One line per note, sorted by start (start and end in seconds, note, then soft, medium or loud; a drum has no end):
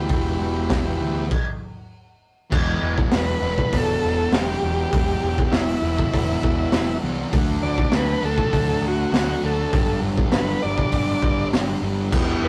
0.00 1.25 E4 medium
0.00 1.25 G4 medium
0.00 1.27 B4 medium
0.06 0.37 E1 loud
0.06 0.83 E2 medium
0.06 0.57 B2 medium
0.06 kick loud
0.06 open hi-hat medium
0.10 0.52 E3 loud
0.39 0.67 E1 medium
0.53 0.80 E3 medium
0.59 0.83 B2 medium
0.70 0.98 E1 medium
0.70 kick loud
0.70 snare loud
0.70 open hi-hat medium
0.81 0.99 B2 medium
0.81 1.01 E3 medium
0.86 0.96 E2 medium
0.98 1.28 D2 medium
0.98 1.27 E2 medium
0.98 1.15 B2 medium
1.02 1.13 E3 medium
1.15 muted distorted electric guitar stroke medium
1.31 kick loud
1.31 crash medium
2.51 2.73 E1 medium
2.51 3.10 E2 medium
2.51 3.10 B2 loud
2.51 3.12 E3 loud
2.51 kick loud
2.51 crash loud
2.81 3.03 E1 medium
2.98 kick medium
3.11 3.33 E1 medium
3.11 3.40 E2 loud
3.11 3.41 B2 loud
3.11 3.42 E3 loud
3.11 snare loud
3.11 open hi-hat medium
3.17 3.76 B4 medium
3.41 3.63 E1 medium
3.41 3.71 E2 medium
3.41 3.71 B2 medium
3.41 3.72 E3 loud
3.58 kick medium
3.72 3.94 E1 medium
3.72 4.32 E2 loud
3.72 4.33 B2 loud
3.72 4.33 E3 loud
3.72 kick loud
3.72 open hi-hat medium
3.77 4.37 A4 loud
4.03 4.24 E1 medium
4.31 4.53 E1 loud
4.31 4.60 E2 medium
4.31 4.61 B2 medium
4.31 4.63 E3 medium
4.31 5.43 G4 medium
4.31 snare loud
4.31 open hi-hat medium
4.62 4.84 E1 medium
4.62 4.90 E2 medium
4.62 4.92 B2 medium
4.62 4.93 E3 loud
4.92 5.14 E1 loud
4.92 5.52 E2 medium
4.92 5.52 B2 loud
4.92 5.53 E3 loud
4.92 kick loud
4.92 open hi-hat medium
5.22 5.44 E1 medium
5.38 kick medium
5.47 5.53 G4 medium
5.51 5.74 E1 loud
5.51 5.82 E2 medium
5.51 5.83 B2 medium
5.51 5.84 E3 loud
5.51 6.10 E4 medium
5.51 snare loud
5.51 open hi-hat medium
5.82 6.03 E1 loud
5.82 6.11 E2 medium
5.82 6.12 B2 medium
5.82 6.13 E3 loud
5.99 kick medium
6.12 6.34 E1 loud
6.12 6.70 E2 loud
6.12 6.71 B2 loud
6.12 6.73 E3 loud
6.12 6.98 E4 medium
6.12 kick loud
6.12 open hi-hat medium
6.43 6.65 E1 medium
6.43 kick medium
6.71 6.94 E1 loud
6.71 7.01 E2 medium
6.71 7.02 B2 medium
6.71 7.03 E3 loud
6.71 snare loud
6.71 open hi-hat medium
7.02 7.24 C2 medium
7.02 7.30 E2 medium
7.02 7.30 B2 medium
7.02 7.32 E3 loud
7.31 7.54 D2 loud
7.31 7.91 D3 loud
7.31 7.92 A3 loud
7.31 7.93 D4 loud
7.31 kick loud
7.31 open hi-hat medium
7.63 7.84 D2 medium
7.63 7.93 D5 loud
7.78 kick medium
7.92 8.13 D2 loud
7.92 8.20 D3 loud
7.92 8.21 A3 loud
7.92 8.22 D4 loud
7.92 snare loud
7.92 open hi-hat medium
7.96 8.25 B4 loud
8.21 8.44 D2 medium
8.21 8.49 D3 medium
8.21 8.50 A3 medium
8.21 8.52 D4 medium
8.25 8.85 A4 loud
8.38 kick medium
8.51 8.74 D2 loud
8.51 9.11 D3 loud
8.51 9.12 A3 loud
8.51 9.13 D4 loud
8.51 kick loud
8.51 open hi-hat medium
8.82 9.04 D2 medium
8.88 9.16 F#4 medium
9.12 9.34 D2 loud
9.12 9.40 D3 medium
9.12 9.41 A3 loud
9.12 9.42 D4 medium
9.12 snare loud
9.12 open hi-hat medium
9.17 9.43 F#4 medium
9.41 9.64 D2 medium
9.41 9.70 D3 medium
9.41 9.70 A3 medium
9.41 9.71 D4 medium
9.46 10.00 A4 medium
9.71 9.94 G1 loud
9.71 10.30 G2 loud
9.71 10.31 D3 loud
9.71 10.33 G3 loud
9.71 kick loud
9.71 open hi-hat medium
10.02 10.23 G1 loud
10.18 kick medium
10.32 10.54 G1 loud
10.32 10.60 G2 medium
10.32 10.62 D3 loud
10.32 10.63 G3 loud
10.32 10.63 B4 medium
10.32 snare loud
10.32 open hi-hat medium
10.61 10.85 G1 medium
10.61 10.90 G2 medium
10.61 10.91 D3 loud
10.61 10.93 G3 loud
10.61 11.48 D5 loud
10.78 kick medium
10.91 11.14 G1 medium
10.91 11.51 G2 medium
10.91 11.53 D3 loud
10.91 11.54 G3 loud
10.91 kick loud
10.91 open hi-hat medium
11.23 11.44 G1 medium
11.23 kick medium
11.52 11.74 G1 loud
11.52 11.80 G2 medium
11.52 11.81 D3 medium
11.52 11.83 G3 medium
11.52 snare loud
11.52 open hi-hat medium
11.82 12.12 G1 medium
11.82 12.10 G2 medium
11.82 12.11 D3 medium
11.82 12.14 G3 medium
12.11 12.33 E1 loud
12.11 12.48 E2 loud
12.11 12.48 B2 loud
12.11 12.48 E3 loud
12.11 12.48 E4 medium
12.11 12.48 G4 medium
12.11 kick loud
12.11 crash loud
12.16 12.48 B4 medium
12.42 12.48 E1 medium
12.42 12.48 B4 loud